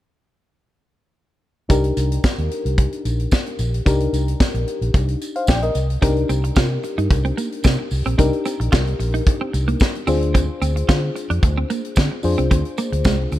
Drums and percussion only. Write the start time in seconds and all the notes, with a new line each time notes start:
1.70 kick, closed hi-hat, tambourine
1.84 closed hi-hat
1.97 closed hi-hat, tambourine
2.12 closed hi-hat
2.24 kick, snare, tambourine
2.38 closed hi-hat
2.51 closed hi-hat
2.66 closed hi-hat
2.78 kick, closed hi-hat
2.92 closed hi-hat
3.05 closed hi-hat, tambourine
3.19 closed hi-hat
3.31 kick, snare, tambourine
3.46 closed hi-hat
3.59 closed hi-hat, tambourine
3.74 closed hi-hat
3.86 kick, closed hi-hat, tambourine
4.00 closed hi-hat
4.13 closed hi-hat, tambourine
4.28 closed hi-hat
4.40 kick, snare, tambourine
4.54 closed hi-hat
4.68 closed hi-hat
4.82 closed hi-hat
4.94 kick, closed hi-hat, tambourine
5.08 closed hi-hat
5.21 closed hi-hat, tambourine
5.36 closed hi-hat
5.47 kick, snare, tambourine
5.62 closed hi-hat
5.75 closed hi-hat, tambourine
5.90 closed hi-hat
6.02 kick, closed hi-hat, tambourine
6.16 closed hi-hat
6.29 closed hi-hat, tambourine
6.44 closed hi-hat
6.56 kick, snare, tambourine
6.83 closed hi-hat, tambourine
6.98 closed hi-hat
7.10 kick, closed hi-hat, tambourine
7.25 closed hi-hat
7.38 closed hi-hat, tambourine
7.52 closed hi-hat
7.64 kick, snare, tambourine
7.91 open hi-hat, tambourine
8.06 closed hi-hat
8.19 kick, closed hi-hat, tambourine
8.33 closed hi-hat
8.45 closed hi-hat, tambourine
8.61 closed hi-hat
8.72 kick, snare, tambourine
8.87 closed hi-hat
9.00 closed hi-hat, tambourine
9.14 closed hi-hat
9.26 kick, closed hi-hat
9.54 closed hi-hat, tambourine
9.68 closed hi-hat
9.80 kick, snare, tambourine
9.95 closed hi-hat
10.07 open hi-hat, tambourine
10.23 closed hi-hat
10.35 kick, closed hi-hat, tambourine
10.62 closed hi-hat, tambourine
10.77 closed hi-hat
10.89 kick, snare, tambourine
11.16 closed hi-hat, tambourine
11.31 closed hi-hat
11.43 kick, closed hi-hat, tambourine
11.70 closed hi-hat, tambourine
11.85 closed hi-hat
11.96 kick, snare, tambourine
12.23 open hi-hat, tambourine
12.39 closed hi-hat
12.51 kick, closed hi-hat, tambourine
12.65 closed hi-hat
12.78 closed hi-hat, tambourine
12.93 closed hi-hat
13.04 kick, snare, tambourine
13.32 closed hi-hat, tambourine